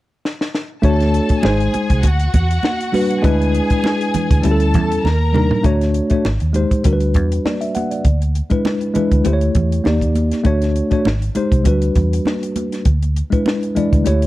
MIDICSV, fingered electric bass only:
0, 0, Header, 1, 3, 480
1, 0, Start_track
1, 0, Tempo, 601202
1, 670, Time_signature, 4, 2, 24, 8
1, 11392, End_track
2, 0, Start_track
2, 0, Title_t, "Fingered electric bass"
2, 0, Program_c, 0, 33
2, 671, Note_on_c, 0, 38, 100
2, 947, Note_off_c, 0, 38, 0
2, 1153, Note_on_c, 0, 32, 86
2, 1331, Note_off_c, 0, 32, 0
2, 1522, Note_on_c, 0, 36, 82
2, 1604, Note_off_c, 0, 36, 0
2, 1632, Note_on_c, 0, 38, 88
2, 1811, Note_off_c, 0, 38, 0
2, 1873, Note_on_c, 0, 40, 76
2, 2051, Note_off_c, 0, 40, 0
2, 2591, Note_on_c, 0, 38, 89
2, 2867, Note_off_c, 0, 38, 0
2, 3440, Note_on_c, 0, 38, 71
2, 3522, Note_off_c, 0, 38, 0
2, 3553, Note_on_c, 0, 38, 89
2, 3791, Note_off_c, 0, 38, 0
2, 3791, Note_on_c, 0, 40, 81
2, 3969, Note_off_c, 0, 40, 0
2, 4027, Note_on_c, 0, 39, 90
2, 4387, Note_off_c, 0, 39, 0
2, 4509, Note_on_c, 0, 38, 87
2, 4786, Note_off_c, 0, 38, 0
2, 4991, Note_on_c, 0, 32, 74
2, 5087, Note_off_c, 0, 32, 0
2, 5123, Note_on_c, 0, 39, 68
2, 5301, Note_off_c, 0, 39, 0
2, 5471, Note_on_c, 0, 38, 85
2, 5712, Note_off_c, 0, 38, 0
2, 5712, Note_on_c, 0, 40, 70
2, 5890, Note_off_c, 0, 40, 0
2, 6429, Note_on_c, 0, 38, 84
2, 6706, Note_off_c, 0, 38, 0
2, 7282, Note_on_c, 0, 38, 71
2, 7363, Note_off_c, 0, 38, 0
2, 7391, Note_on_c, 0, 38, 89
2, 7569, Note_off_c, 0, 38, 0
2, 7630, Note_on_c, 0, 40, 73
2, 7809, Note_off_c, 0, 40, 0
2, 7870, Note_on_c, 0, 39, 86
2, 8228, Note_off_c, 0, 39, 0
2, 8346, Note_on_c, 0, 38, 90
2, 8623, Note_off_c, 0, 38, 0
2, 8828, Note_on_c, 0, 32, 84
2, 9007, Note_off_c, 0, 32, 0
2, 9198, Note_on_c, 0, 36, 73
2, 9280, Note_off_c, 0, 36, 0
2, 9309, Note_on_c, 0, 38, 85
2, 9488, Note_off_c, 0, 38, 0
2, 9550, Note_on_c, 0, 40, 74
2, 9729, Note_off_c, 0, 40, 0
2, 10268, Note_on_c, 0, 38, 84
2, 10544, Note_off_c, 0, 38, 0
2, 11120, Note_on_c, 0, 38, 68
2, 11200, Note_off_c, 0, 38, 0
2, 11230, Note_on_c, 0, 38, 82
2, 11392, Note_off_c, 0, 38, 0
2, 11392, End_track
3, 0, Start_track
3, 0, Title_t, "Muted fingered electric bass strokes"
3, 1393, Note_on_c, 9, 29, 42
3, 1472, Note_off_c, 9, 29, 0
3, 3313, Note_on_c, 9, 29, 42
3, 3393, Note_off_c, 9, 29, 0
3, 7151, Note_on_c, 9, 29, 38
3, 7231, Note_off_c, 9, 29, 0
3, 9066, Note_on_c, 9, 29, 39
3, 9146, Note_off_c, 9, 29, 0
3, 10992, Note_on_c, 9, 29, 37
3, 11072, Note_off_c, 9, 29, 0
3, 11392, End_track
0, 0, End_of_file